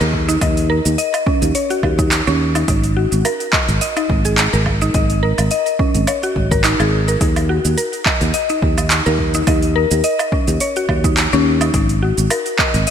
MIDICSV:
0, 0, Header, 1, 4, 480
1, 0, Start_track
1, 0, Key_signature, -6, "minor"
1, 0, Tempo, 566038
1, 354, Time_signature, 4, 2, 24, 8
1, 10943, End_track
2, 0, Start_track
2, 0, Title_t, "Synth pluck"
2, 0, Program_c, 0, 84
2, 4, Note_on_c, 0, 70, 80
2, 232, Note_off_c, 0, 70, 0
2, 242, Note_on_c, 0, 63, 107
2, 341, Note_off_c, 0, 63, 0
2, 350, Note_on_c, 0, 75, 79
2, 581, Note_off_c, 0, 75, 0
2, 591, Note_on_c, 0, 70, 97
2, 717, Note_off_c, 0, 70, 0
2, 833, Note_on_c, 0, 75, 85
2, 1062, Note_off_c, 0, 75, 0
2, 1072, Note_on_c, 0, 61, 81
2, 1302, Note_off_c, 0, 61, 0
2, 1314, Note_on_c, 0, 73, 86
2, 1438, Note_off_c, 0, 73, 0
2, 1446, Note_on_c, 0, 66, 82
2, 1548, Note_off_c, 0, 66, 0
2, 1685, Note_on_c, 0, 63, 76
2, 1912, Note_off_c, 0, 63, 0
2, 1928, Note_on_c, 0, 61, 104
2, 2153, Note_off_c, 0, 61, 0
2, 2167, Note_on_c, 0, 63, 72
2, 2264, Note_off_c, 0, 63, 0
2, 2274, Note_on_c, 0, 63, 82
2, 2503, Note_off_c, 0, 63, 0
2, 2515, Note_on_c, 0, 66, 78
2, 2743, Note_off_c, 0, 66, 0
2, 2756, Note_on_c, 0, 70, 87
2, 2830, Note_off_c, 0, 70, 0
2, 2992, Note_on_c, 0, 75, 98
2, 3222, Note_off_c, 0, 75, 0
2, 3233, Note_on_c, 0, 75, 83
2, 3351, Note_off_c, 0, 75, 0
2, 3363, Note_on_c, 0, 63, 84
2, 3426, Note_off_c, 0, 63, 0
2, 3604, Note_on_c, 0, 68, 79
2, 3666, Note_off_c, 0, 68, 0
2, 3844, Note_on_c, 0, 70, 79
2, 4071, Note_off_c, 0, 70, 0
2, 4085, Note_on_c, 0, 63, 106
2, 4183, Note_off_c, 0, 63, 0
2, 4193, Note_on_c, 0, 75, 80
2, 4422, Note_off_c, 0, 75, 0
2, 4433, Note_on_c, 0, 70, 97
2, 4558, Note_off_c, 0, 70, 0
2, 4674, Note_on_c, 0, 75, 83
2, 4903, Note_off_c, 0, 75, 0
2, 4911, Note_on_c, 0, 61, 78
2, 5142, Note_off_c, 0, 61, 0
2, 5153, Note_on_c, 0, 73, 86
2, 5278, Note_off_c, 0, 73, 0
2, 5286, Note_on_c, 0, 66, 83
2, 5389, Note_off_c, 0, 66, 0
2, 5524, Note_on_c, 0, 70, 96
2, 5628, Note_off_c, 0, 70, 0
2, 5633, Note_on_c, 0, 63, 103
2, 5752, Note_off_c, 0, 63, 0
2, 5766, Note_on_c, 0, 68, 74
2, 5863, Note_off_c, 0, 68, 0
2, 6007, Note_on_c, 0, 70, 75
2, 6109, Note_off_c, 0, 70, 0
2, 6115, Note_on_c, 0, 63, 86
2, 6344, Note_off_c, 0, 63, 0
2, 6354, Note_on_c, 0, 66, 80
2, 6583, Note_off_c, 0, 66, 0
2, 6594, Note_on_c, 0, 70, 83
2, 6668, Note_off_c, 0, 70, 0
2, 6832, Note_on_c, 0, 75, 100
2, 7062, Note_off_c, 0, 75, 0
2, 7073, Note_on_c, 0, 75, 85
2, 7192, Note_off_c, 0, 75, 0
2, 7207, Note_on_c, 0, 63, 80
2, 7268, Note_off_c, 0, 63, 0
2, 7446, Note_on_c, 0, 63, 71
2, 7672, Note_off_c, 0, 63, 0
2, 7684, Note_on_c, 0, 70, 80
2, 7911, Note_off_c, 0, 70, 0
2, 7926, Note_on_c, 0, 63, 99
2, 8023, Note_off_c, 0, 63, 0
2, 8034, Note_on_c, 0, 75, 77
2, 8263, Note_off_c, 0, 75, 0
2, 8273, Note_on_c, 0, 70, 99
2, 8398, Note_off_c, 0, 70, 0
2, 8514, Note_on_c, 0, 75, 84
2, 8743, Note_off_c, 0, 75, 0
2, 8757, Note_on_c, 0, 61, 75
2, 8984, Note_off_c, 0, 61, 0
2, 8997, Note_on_c, 0, 73, 87
2, 9120, Note_off_c, 0, 73, 0
2, 9129, Note_on_c, 0, 66, 82
2, 9230, Note_off_c, 0, 66, 0
2, 9369, Note_on_c, 0, 63, 74
2, 9594, Note_off_c, 0, 63, 0
2, 9608, Note_on_c, 0, 61, 107
2, 9833, Note_off_c, 0, 61, 0
2, 9848, Note_on_c, 0, 63, 81
2, 9944, Note_off_c, 0, 63, 0
2, 9956, Note_on_c, 0, 63, 82
2, 10184, Note_off_c, 0, 63, 0
2, 10197, Note_on_c, 0, 66, 75
2, 10424, Note_off_c, 0, 66, 0
2, 10437, Note_on_c, 0, 70, 88
2, 10510, Note_off_c, 0, 70, 0
2, 10677, Note_on_c, 0, 75, 102
2, 10904, Note_off_c, 0, 75, 0
2, 10943, End_track
3, 0, Start_track
3, 0, Title_t, "Fretless electric bass"
3, 0, Program_c, 1, 35
3, 6, Note_on_c, 1, 39, 103
3, 306, Note_off_c, 1, 39, 0
3, 354, Note_on_c, 1, 39, 89
3, 667, Note_off_c, 1, 39, 0
3, 725, Note_on_c, 1, 39, 91
3, 804, Note_off_c, 1, 39, 0
3, 1205, Note_on_c, 1, 39, 95
3, 1284, Note_off_c, 1, 39, 0
3, 1554, Note_on_c, 1, 39, 82
3, 1867, Note_off_c, 1, 39, 0
3, 1928, Note_on_c, 1, 39, 103
3, 2227, Note_off_c, 1, 39, 0
3, 2274, Note_on_c, 1, 32, 88
3, 2587, Note_off_c, 1, 32, 0
3, 2646, Note_on_c, 1, 32, 86
3, 2724, Note_off_c, 1, 32, 0
3, 3124, Note_on_c, 1, 32, 94
3, 3203, Note_off_c, 1, 32, 0
3, 3473, Note_on_c, 1, 32, 78
3, 3787, Note_off_c, 1, 32, 0
3, 3844, Note_on_c, 1, 32, 105
3, 4145, Note_off_c, 1, 32, 0
3, 4194, Note_on_c, 1, 32, 92
3, 4507, Note_off_c, 1, 32, 0
3, 4566, Note_on_c, 1, 32, 98
3, 4644, Note_off_c, 1, 32, 0
3, 5044, Note_on_c, 1, 32, 102
3, 5123, Note_off_c, 1, 32, 0
3, 5394, Note_on_c, 1, 32, 79
3, 5707, Note_off_c, 1, 32, 0
3, 5763, Note_on_c, 1, 32, 95
3, 6065, Note_off_c, 1, 32, 0
3, 6114, Note_on_c, 1, 39, 88
3, 6427, Note_off_c, 1, 39, 0
3, 6485, Note_on_c, 1, 39, 93
3, 6564, Note_off_c, 1, 39, 0
3, 6965, Note_on_c, 1, 39, 94
3, 7043, Note_off_c, 1, 39, 0
3, 7313, Note_on_c, 1, 39, 83
3, 7626, Note_off_c, 1, 39, 0
3, 7686, Note_on_c, 1, 39, 105
3, 7986, Note_off_c, 1, 39, 0
3, 8032, Note_on_c, 1, 39, 92
3, 8346, Note_off_c, 1, 39, 0
3, 8406, Note_on_c, 1, 39, 98
3, 8484, Note_off_c, 1, 39, 0
3, 8884, Note_on_c, 1, 39, 102
3, 8963, Note_off_c, 1, 39, 0
3, 9233, Note_on_c, 1, 39, 81
3, 9547, Note_off_c, 1, 39, 0
3, 9608, Note_on_c, 1, 39, 108
3, 9907, Note_off_c, 1, 39, 0
3, 9954, Note_on_c, 1, 32, 92
3, 10267, Note_off_c, 1, 32, 0
3, 10325, Note_on_c, 1, 32, 92
3, 10404, Note_off_c, 1, 32, 0
3, 10804, Note_on_c, 1, 32, 102
3, 10883, Note_off_c, 1, 32, 0
3, 10943, End_track
4, 0, Start_track
4, 0, Title_t, "Drums"
4, 6, Note_on_c, 9, 82, 35
4, 91, Note_off_c, 9, 82, 0
4, 113, Note_on_c, 9, 36, 62
4, 198, Note_off_c, 9, 36, 0
4, 244, Note_on_c, 9, 46, 34
4, 245, Note_on_c, 9, 82, 72
4, 329, Note_off_c, 9, 46, 0
4, 330, Note_off_c, 9, 82, 0
4, 351, Note_on_c, 9, 46, 70
4, 351, Note_on_c, 9, 77, 71
4, 353, Note_on_c, 9, 36, 117
4, 353, Note_on_c, 9, 82, 54
4, 436, Note_off_c, 9, 46, 0
4, 436, Note_off_c, 9, 77, 0
4, 437, Note_off_c, 9, 36, 0
4, 438, Note_off_c, 9, 82, 0
4, 485, Note_on_c, 9, 46, 46
4, 486, Note_on_c, 9, 82, 33
4, 570, Note_off_c, 9, 46, 0
4, 571, Note_off_c, 9, 82, 0
4, 725, Note_on_c, 9, 46, 34
4, 726, Note_on_c, 9, 82, 72
4, 810, Note_off_c, 9, 46, 0
4, 811, Note_off_c, 9, 82, 0
4, 834, Note_on_c, 9, 46, 67
4, 835, Note_on_c, 9, 82, 58
4, 919, Note_off_c, 9, 46, 0
4, 920, Note_off_c, 9, 82, 0
4, 966, Note_on_c, 9, 46, 34
4, 966, Note_on_c, 9, 77, 77
4, 967, Note_on_c, 9, 82, 36
4, 1050, Note_off_c, 9, 46, 0
4, 1050, Note_off_c, 9, 77, 0
4, 1052, Note_off_c, 9, 82, 0
4, 1074, Note_on_c, 9, 36, 116
4, 1158, Note_off_c, 9, 36, 0
4, 1205, Note_on_c, 9, 46, 41
4, 1206, Note_on_c, 9, 82, 68
4, 1289, Note_off_c, 9, 46, 0
4, 1291, Note_off_c, 9, 82, 0
4, 1313, Note_on_c, 9, 46, 76
4, 1314, Note_on_c, 9, 82, 64
4, 1398, Note_off_c, 9, 46, 0
4, 1399, Note_off_c, 9, 82, 0
4, 1445, Note_on_c, 9, 46, 31
4, 1446, Note_on_c, 9, 82, 33
4, 1530, Note_off_c, 9, 46, 0
4, 1531, Note_off_c, 9, 82, 0
4, 1553, Note_on_c, 9, 36, 62
4, 1553, Note_on_c, 9, 77, 76
4, 1638, Note_off_c, 9, 36, 0
4, 1638, Note_off_c, 9, 77, 0
4, 1685, Note_on_c, 9, 36, 108
4, 1685, Note_on_c, 9, 46, 31
4, 1686, Note_on_c, 9, 82, 73
4, 1769, Note_off_c, 9, 46, 0
4, 1770, Note_off_c, 9, 36, 0
4, 1771, Note_off_c, 9, 82, 0
4, 1793, Note_on_c, 9, 39, 80
4, 1793, Note_on_c, 9, 46, 70
4, 1795, Note_on_c, 9, 82, 59
4, 1878, Note_off_c, 9, 39, 0
4, 1878, Note_off_c, 9, 46, 0
4, 1880, Note_off_c, 9, 82, 0
4, 1926, Note_on_c, 9, 82, 34
4, 2011, Note_off_c, 9, 82, 0
4, 2164, Note_on_c, 9, 46, 34
4, 2164, Note_on_c, 9, 77, 79
4, 2165, Note_on_c, 9, 82, 65
4, 2249, Note_off_c, 9, 46, 0
4, 2249, Note_off_c, 9, 77, 0
4, 2250, Note_off_c, 9, 82, 0
4, 2273, Note_on_c, 9, 46, 69
4, 2274, Note_on_c, 9, 36, 127
4, 2275, Note_on_c, 9, 82, 60
4, 2358, Note_off_c, 9, 36, 0
4, 2358, Note_off_c, 9, 46, 0
4, 2360, Note_off_c, 9, 82, 0
4, 2405, Note_on_c, 9, 46, 44
4, 2406, Note_on_c, 9, 82, 34
4, 2489, Note_off_c, 9, 46, 0
4, 2491, Note_off_c, 9, 82, 0
4, 2645, Note_on_c, 9, 46, 31
4, 2647, Note_on_c, 9, 82, 74
4, 2730, Note_off_c, 9, 46, 0
4, 2732, Note_off_c, 9, 82, 0
4, 2755, Note_on_c, 9, 46, 64
4, 2755, Note_on_c, 9, 77, 72
4, 2757, Note_on_c, 9, 82, 58
4, 2840, Note_off_c, 9, 46, 0
4, 2840, Note_off_c, 9, 77, 0
4, 2842, Note_off_c, 9, 82, 0
4, 2886, Note_on_c, 9, 46, 32
4, 2888, Note_on_c, 9, 82, 35
4, 2971, Note_off_c, 9, 46, 0
4, 2972, Note_off_c, 9, 82, 0
4, 2993, Note_on_c, 9, 39, 78
4, 2994, Note_on_c, 9, 36, 117
4, 3078, Note_off_c, 9, 36, 0
4, 3078, Note_off_c, 9, 39, 0
4, 3124, Note_on_c, 9, 46, 41
4, 3126, Note_on_c, 9, 82, 67
4, 3209, Note_off_c, 9, 46, 0
4, 3211, Note_off_c, 9, 82, 0
4, 3233, Note_on_c, 9, 46, 71
4, 3234, Note_on_c, 9, 82, 63
4, 3318, Note_off_c, 9, 46, 0
4, 3319, Note_off_c, 9, 82, 0
4, 3363, Note_on_c, 9, 46, 29
4, 3363, Note_on_c, 9, 77, 69
4, 3365, Note_on_c, 9, 82, 36
4, 3448, Note_off_c, 9, 46, 0
4, 3448, Note_off_c, 9, 77, 0
4, 3450, Note_off_c, 9, 82, 0
4, 3473, Note_on_c, 9, 36, 112
4, 3558, Note_off_c, 9, 36, 0
4, 3603, Note_on_c, 9, 46, 33
4, 3604, Note_on_c, 9, 82, 70
4, 3688, Note_off_c, 9, 46, 0
4, 3689, Note_off_c, 9, 82, 0
4, 3711, Note_on_c, 9, 39, 86
4, 3711, Note_on_c, 9, 46, 66
4, 3712, Note_on_c, 9, 82, 60
4, 3796, Note_off_c, 9, 39, 0
4, 3796, Note_off_c, 9, 46, 0
4, 3797, Note_off_c, 9, 82, 0
4, 3844, Note_on_c, 9, 82, 36
4, 3929, Note_off_c, 9, 82, 0
4, 3951, Note_on_c, 9, 77, 67
4, 3953, Note_on_c, 9, 36, 64
4, 4036, Note_off_c, 9, 77, 0
4, 4037, Note_off_c, 9, 36, 0
4, 4083, Note_on_c, 9, 46, 31
4, 4084, Note_on_c, 9, 82, 68
4, 4168, Note_off_c, 9, 46, 0
4, 4169, Note_off_c, 9, 82, 0
4, 4190, Note_on_c, 9, 46, 65
4, 4192, Note_on_c, 9, 82, 58
4, 4193, Note_on_c, 9, 36, 125
4, 4275, Note_off_c, 9, 46, 0
4, 4277, Note_off_c, 9, 82, 0
4, 4278, Note_off_c, 9, 36, 0
4, 4323, Note_on_c, 9, 46, 43
4, 4324, Note_on_c, 9, 82, 32
4, 4407, Note_off_c, 9, 46, 0
4, 4409, Note_off_c, 9, 82, 0
4, 4564, Note_on_c, 9, 46, 32
4, 4564, Note_on_c, 9, 77, 79
4, 4565, Note_on_c, 9, 82, 74
4, 4648, Note_off_c, 9, 46, 0
4, 4648, Note_off_c, 9, 77, 0
4, 4650, Note_off_c, 9, 82, 0
4, 4670, Note_on_c, 9, 46, 61
4, 4671, Note_on_c, 9, 82, 53
4, 4755, Note_off_c, 9, 46, 0
4, 4756, Note_off_c, 9, 82, 0
4, 4802, Note_on_c, 9, 46, 28
4, 4804, Note_on_c, 9, 82, 34
4, 4887, Note_off_c, 9, 46, 0
4, 4889, Note_off_c, 9, 82, 0
4, 4913, Note_on_c, 9, 36, 118
4, 4998, Note_off_c, 9, 36, 0
4, 5042, Note_on_c, 9, 46, 44
4, 5043, Note_on_c, 9, 82, 63
4, 5126, Note_off_c, 9, 46, 0
4, 5128, Note_off_c, 9, 82, 0
4, 5150, Note_on_c, 9, 46, 68
4, 5150, Note_on_c, 9, 77, 85
4, 5152, Note_on_c, 9, 82, 64
4, 5235, Note_off_c, 9, 46, 0
4, 5235, Note_off_c, 9, 77, 0
4, 5237, Note_off_c, 9, 82, 0
4, 5284, Note_on_c, 9, 46, 28
4, 5285, Note_on_c, 9, 82, 32
4, 5368, Note_off_c, 9, 46, 0
4, 5370, Note_off_c, 9, 82, 0
4, 5393, Note_on_c, 9, 36, 65
4, 5478, Note_off_c, 9, 36, 0
4, 5525, Note_on_c, 9, 36, 109
4, 5525, Note_on_c, 9, 46, 31
4, 5526, Note_on_c, 9, 82, 71
4, 5609, Note_off_c, 9, 36, 0
4, 5610, Note_off_c, 9, 46, 0
4, 5611, Note_off_c, 9, 82, 0
4, 5631, Note_on_c, 9, 39, 80
4, 5631, Note_on_c, 9, 46, 67
4, 5633, Note_on_c, 9, 82, 61
4, 5716, Note_off_c, 9, 39, 0
4, 5716, Note_off_c, 9, 46, 0
4, 5718, Note_off_c, 9, 82, 0
4, 5764, Note_on_c, 9, 77, 80
4, 5765, Note_on_c, 9, 82, 37
4, 5848, Note_off_c, 9, 77, 0
4, 5850, Note_off_c, 9, 82, 0
4, 6004, Note_on_c, 9, 46, 28
4, 6005, Note_on_c, 9, 82, 71
4, 6089, Note_off_c, 9, 46, 0
4, 6090, Note_off_c, 9, 82, 0
4, 6113, Note_on_c, 9, 36, 121
4, 6113, Note_on_c, 9, 46, 64
4, 6114, Note_on_c, 9, 82, 57
4, 6197, Note_off_c, 9, 46, 0
4, 6198, Note_off_c, 9, 36, 0
4, 6199, Note_off_c, 9, 82, 0
4, 6244, Note_on_c, 9, 46, 41
4, 6244, Note_on_c, 9, 77, 82
4, 6246, Note_on_c, 9, 82, 33
4, 6329, Note_off_c, 9, 46, 0
4, 6329, Note_off_c, 9, 77, 0
4, 6331, Note_off_c, 9, 82, 0
4, 6486, Note_on_c, 9, 46, 30
4, 6487, Note_on_c, 9, 82, 67
4, 6570, Note_off_c, 9, 46, 0
4, 6572, Note_off_c, 9, 82, 0
4, 6594, Note_on_c, 9, 46, 65
4, 6595, Note_on_c, 9, 82, 57
4, 6678, Note_off_c, 9, 46, 0
4, 6680, Note_off_c, 9, 82, 0
4, 6725, Note_on_c, 9, 46, 32
4, 6726, Note_on_c, 9, 82, 33
4, 6810, Note_off_c, 9, 46, 0
4, 6811, Note_off_c, 9, 82, 0
4, 6832, Note_on_c, 9, 39, 69
4, 6832, Note_on_c, 9, 77, 81
4, 6833, Note_on_c, 9, 36, 112
4, 6917, Note_off_c, 9, 39, 0
4, 6917, Note_off_c, 9, 77, 0
4, 6918, Note_off_c, 9, 36, 0
4, 6962, Note_on_c, 9, 46, 42
4, 6963, Note_on_c, 9, 82, 61
4, 7047, Note_off_c, 9, 46, 0
4, 7048, Note_off_c, 9, 82, 0
4, 7070, Note_on_c, 9, 46, 71
4, 7072, Note_on_c, 9, 82, 57
4, 7155, Note_off_c, 9, 46, 0
4, 7157, Note_off_c, 9, 82, 0
4, 7203, Note_on_c, 9, 46, 28
4, 7204, Note_on_c, 9, 82, 34
4, 7288, Note_off_c, 9, 46, 0
4, 7289, Note_off_c, 9, 82, 0
4, 7313, Note_on_c, 9, 36, 109
4, 7398, Note_off_c, 9, 36, 0
4, 7443, Note_on_c, 9, 46, 32
4, 7443, Note_on_c, 9, 77, 83
4, 7444, Note_on_c, 9, 82, 70
4, 7528, Note_off_c, 9, 46, 0
4, 7528, Note_off_c, 9, 77, 0
4, 7529, Note_off_c, 9, 82, 0
4, 7551, Note_on_c, 9, 39, 77
4, 7551, Note_on_c, 9, 46, 69
4, 7552, Note_on_c, 9, 82, 58
4, 7636, Note_off_c, 9, 39, 0
4, 7636, Note_off_c, 9, 46, 0
4, 7637, Note_off_c, 9, 82, 0
4, 7682, Note_on_c, 9, 82, 37
4, 7767, Note_off_c, 9, 82, 0
4, 7793, Note_on_c, 9, 36, 59
4, 7877, Note_off_c, 9, 36, 0
4, 7920, Note_on_c, 9, 46, 32
4, 7921, Note_on_c, 9, 82, 68
4, 8005, Note_off_c, 9, 46, 0
4, 8006, Note_off_c, 9, 82, 0
4, 8031, Note_on_c, 9, 46, 68
4, 8031, Note_on_c, 9, 77, 79
4, 8032, Note_on_c, 9, 82, 54
4, 8033, Note_on_c, 9, 36, 121
4, 8116, Note_off_c, 9, 46, 0
4, 8116, Note_off_c, 9, 77, 0
4, 8117, Note_off_c, 9, 82, 0
4, 8118, Note_off_c, 9, 36, 0
4, 8162, Note_on_c, 9, 46, 44
4, 8163, Note_on_c, 9, 82, 33
4, 8246, Note_off_c, 9, 46, 0
4, 8248, Note_off_c, 9, 82, 0
4, 8403, Note_on_c, 9, 46, 33
4, 8404, Note_on_c, 9, 82, 71
4, 8488, Note_off_c, 9, 46, 0
4, 8489, Note_off_c, 9, 82, 0
4, 8512, Note_on_c, 9, 46, 71
4, 8513, Note_on_c, 9, 82, 55
4, 8597, Note_off_c, 9, 46, 0
4, 8598, Note_off_c, 9, 82, 0
4, 8644, Note_on_c, 9, 46, 32
4, 8644, Note_on_c, 9, 77, 83
4, 8646, Note_on_c, 9, 82, 34
4, 8729, Note_off_c, 9, 46, 0
4, 8729, Note_off_c, 9, 77, 0
4, 8730, Note_off_c, 9, 82, 0
4, 8753, Note_on_c, 9, 36, 102
4, 8838, Note_off_c, 9, 36, 0
4, 8883, Note_on_c, 9, 46, 42
4, 8884, Note_on_c, 9, 82, 61
4, 8968, Note_off_c, 9, 46, 0
4, 8969, Note_off_c, 9, 82, 0
4, 8992, Note_on_c, 9, 46, 71
4, 8993, Note_on_c, 9, 82, 54
4, 9077, Note_off_c, 9, 46, 0
4, 9078, Note_off_c, 9, 82, 0
4, 9125, Note_on_c, 9, 46, 29
4, 9127, Note_on_c, 9, 82, 31
4, 9210, Note_off_c, 9, 46, 0
4, 9212, Note_off_c, 9, 82, 0
4, 9232, Note_on_c, 9, 77, 80
4, 9233, Note_on_c, 9, 36, 61
4, 9317, Note_off_c, 9, 77, 0
4, 9318, Note_off_c, 9, 36, 0
4, 9364, Note_on_c, 9, 36, 104
4, 9364, Note_on_c, 9, 46, 33
4, 9365, Note_on_c, 9, 82, 64
4, 9449, Note_off_c, 9, 36, 0
4, 9449, Note_off_c, 9, 46, 0
4, 9450, Note_off_c, 9, 82, 0
4, 9473, Note_on_c, 9, 39, 79
4, 9473, Note_on_c, 9, 46, 71
4, 9474, Note_on_c, 9, 82, 56
4, 9558, Note_off_c, 9, 39, 0
4, 9558, Note_off_c, 9, 46, 0
4, 9559, Note_off_c, 9, 82, 0
4, 9606, Note_on_c, 9, 82, 35
4, 9691, Note_off_c, 9, 82, 0
4, 9844, Note_on_c, 9, 46, 32
4, 9844, Note_on_c, 9, 77, 82
4, 9846, Note_on_c, 9, 82, 63
4, 9929, Note_off_c, 9, 46, 0
4, 9929, Note_off_c, 9, 77, 0
4, 9931, Note_off_c, 9, 82, 0
4, 9954, Note_on_c, 9, 36, 121
4, 9954, Note_on_c, 9, 46, 71
4, 9955, Note_on_c, 9, 82, 54
4, 10039, Note_off_c, 9, 36, 0
4, 10039, Note_off_c, 9, 46, 0
4, 10040, Note_off_c, 9, 82, 0
4, 10085, Note_on_c, 9, 46, 44
4, 10087, Note_on_c, 9, 82, 33
4, 10170, Note_off_c, 9, 46, 0
4, 10171, Note_off_c, 9, 82, 0
4, 10325, Note_on_c, 9, 46, 33
4, 10327, Note_on_c, 9, 82, 69
4, 10410, Note_off_c, 9, 46, 0
4, 10412, Note_off_c, 9, 82, 0
4, 10434, Note_on_c, 9, 46, 69
4, 10434, Note_on_c, 9, 77, 84
4, 10435, Note_on_c, 9, 82, 49
4, 10519, Note_off_c, 9, 46, 0
4, 10519, Note_off_c, 9, 77, 0
4, 10520, Note_off_c, 9, 82, 0
4, 10564, Note_on_c, 9, 46, 35
4, 10566, Note_on_c, 9, 82, 34
4, 10649, Note_off_c, 9, 46, 0
4, 10650, Note_off_c, 9, 82, 0
4, 10674, Note_on_c, 9, 36, 103
4, 10674, Note_on_c, 9, 39, 76
4, 10759, Note_off_c, 9, 36, 0
4, 10759, Note_off_c, 9, 39, 0
4, 10805, Note_on_c, 9, 46, 48
4, 10806, Note_on_c, 9, 82, 62
4, 10890, Note_off_c, 9, 46, 0
4, 10891, Note_off_c, 9, 82, 0
4, 10913, Note_on_c, 9, 46, 76
4, 10915, Note_on_c, 9, 82, 57
4, 10943, Note_off_c, 9, 46, 0
4, 10943, Note_off_c, 9, 82, 0
4, 10943, End_track
0, 0, End_of_file